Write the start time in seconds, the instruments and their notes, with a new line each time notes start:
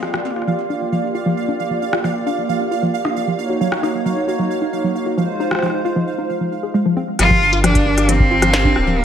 0.03 analog synth pad A#3 F4 G4 D5, synth texture F5, cross-stick
0.14 synth arpeggio sound F3, cross-stick
0.25 cross-stick
0.31 cross-stick
0.36 synth arpeggio sound F4, cross-stick
0.42 cross-stick
0.47 synth arpeggio sound F3
0.70 synth arpeggio sound D4
0.92 synth arpeggio sound F3
1.15 synth arpeggio sound F4
1.26 synth arpeggio sound F3
1.48 synth arpeggio sound D4
1.70 synth arpeggio sound F3
1.93 synth arpeggio sound F4, cross-stick
2.04 synth arpeggio sound F3, cross-stick
2.27 synth arpeggio sound D4
2.49 synth arpeggio sound F3
2.71 synth arpeggio sound F4
2.83 synth arpeggio sound F3
3.05 synth arpeggio sound D4, cross-stick
3.27 synth arpeggio sound F3
3.38 analog synth pad D#4 F#4 C#5
3.50 synth arpeggio sound F#4
3.61 synth arpeggio sound F#3
3.72 cross-stick
3.83 synth arpeggio sound D#4, cross-stick
4.06 synth arpeggio sound F#3
4.28 synth arpeggio sound F#4
4.39 synth arpeggio sound F#3
4.62 synth arpeggio sound D#4
4.84 synth arpeggio sound F#3
5.06 synth arpeggio sound F#4
5.18 synth arpeggio sound F3, analog synth pad G#3 F4 C5
5.40 synth arpeggio sound D#4
5.51 cross-stick
5.55 cross-stick
5.59 synth arpeggio sound F3, cross-stick
5.62 cross-stick
5.66 cross-stick
5.70 cross-stick
5.85 synth arpeggio sound F4
5.96 synth arpeggio sound F3
6.18 synth arpeggio sound D#4
6.41 synth arpeggio sound F3
6.63 synth arpeggio sound G#4
6.74 synth arpeggio sound G#3
6.86 synth arpeggio sound F3
6.97 synth arpeggio sound C4
7.19 sub bass G1, analog synth pad D4 G4 A#4 F5, cello F4, cross-stick, closed hi-hat
7.30 synth arpeggio sound F3, kick
7.53 synth arpeggio sound F4, closed hi-hat
7.64 synth arpeggio sound F3, cello D4, cross-stick, closed hi-hat
7.75 kick, closed hi-hat
7.86 synth arpeggio sound D4
7.98 cross-stick, closed hi-hat
8.09 synth arpeggio sound F3, cello C4, closed hi-hat
8.20 kick
8.31 synth arpeggio sound F4
8.42 synth arpeggio sound F3, cross-stick, closed hi-hat
8.54 snare, closed hi-hat
8.65 synth arpeggio sound D4, kick
8.76 sub bass D1, cross-stick
8.87 synth arpeggio sound F3
8.98 cello A#3